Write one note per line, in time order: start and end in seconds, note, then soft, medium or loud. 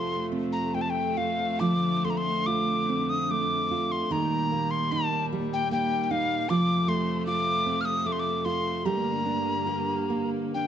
0.00 4.07 F2 medium
0.00 1.58 C3 medium
0.00 1.59 F3 medium
0.00 0.73 A3 soft
0.00 4.07 A3 medium
0.00 1.16 F4 medium
0.00 0.26 C6 medium
0.32 2.88 C4 soft
0.53 0.76 A#5 medium
0.74 2.03 A3 soft
0.74 0.83 G5 medium
0.81 0.91 A5 soft
0.90 1.19 G5 medium
1.17 1.60 F4 soft
1.17 1.61 F5 medium
1.60 4.08 D3 medium
1.60 4.10 F3 medium
1.60 2.46 F4 medium
1.60 2.06 D6 medium
2.05 3.30 A3 soft
2.05 2.12 C6 medium
2.10 2.19 A#5 medium
2.17 2.48 C6 medium
2.46 3.70 F4 medium
2.46 3.11 D6 medium
2.89 4.19 C4 medium
3.09 3.32 D#6 medium
3.31 4.19 A3 medium
3.31 3.93 D6 medium
3.71 4.11 F4 soft
3.92 4.13 C6 medium
4.10 6.46 D#2 medium
4.10 6.46 A#2 medium
4.10 6.49 D#3 medium
4.10 6.47 G3 medium
4.10 4.91 D#4 medium
4.10 4.72 A#5 medium
4.52 5.70 A#3 soft
4.71 4.93 C6 medium
4.92 6.10 D#4 medium
4.92 5.26 A5 medium
5.33 6.57 G3 medium
5.53 5.71 G5 medium
5.72 6.57 A#3 medium
5.72 6.04 G5 medium
6.04 6.12 G5 medium
6.11 6.49 D#4 medium
6.11 6.51 F5 medium
6.48 8.84 F2 medium
6.48 8.84 C3 medium
6.48 8.85 F3 medium
6.48 8.84 A3 medium
6.48 7.26 F4 medium
6.48 6.90 D6 medium
6.88 8.05 A3 medium
6.88 7.26 C6 medium
7.26 8.45 F4 medium
7.26 7.82 D6 medium
7.66 8.95 C4 medium
7.81 7.87 F6 medium
7.85 8.08 D#6 medium
8.06 8.95 A3 medium
8.06 8.14 D6 medium
8.12 8.21 C6 medium
8.20 8.46 D6 medium
8.45 8.86 F4 medium
8.45 8.87 C6 medium
8.85 10.67 G2 medium
8.85 10.67 D3 medium
8.85 10.67 G3 medium
8.85 10.67 A#3 medium
8.85 9.66 G4 medium
8.85 10.30 A#5 medium
9.26 10.54 D4 soft
9.67 10.67 G4 medium
10.10 10.67 A#3 soft
10.54 10.67 D4 soft
10.54 10.67 G5 medium